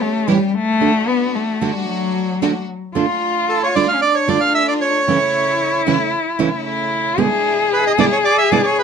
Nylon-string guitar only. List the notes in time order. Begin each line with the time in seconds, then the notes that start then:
0.28 A2 E3 G3 C#4 E4
0.81 D3 A3 D4 F#4
1.61 D3 A3 D4 F#4
2.42 D3 A3 D4 F#4
2.95 D3 A3 D4 F4
3.75 D3 A3 D4 F4
4.28 D3 A3 D4 F4
5.08 C#3 E3 A3 C#4 E4
5.87 C#3 E3 A3 C#4 E4
6.39 C#3 E3 A3 C#4 E4
7.18 B2 D3 G#3 B3 E4
7.98 B2 D3 G#3 B3 E4
8.52 B2 D3 G#3 B3 E4